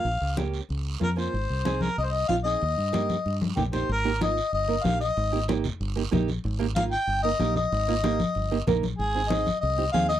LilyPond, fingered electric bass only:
\new Staff \with { instrumentName = "Fingered electric bass" } { \clef bass \time 4/4 \key ees \mixolydian \tempo 4 = 188 bes,,8 des,4. des,4 f,4 | aes,,8 c,4. c,4 bes,,4 | ees,8 g,4. g,4 bes,,4 | aes,,2 g,,4 bes,,4 |
aes,,2 g,,4 bes,,4 | aes,,2 g,,4 bes,,4 | aes,,2 g,,4 bes,,4 | aes,,2 c,4 ees,4 | }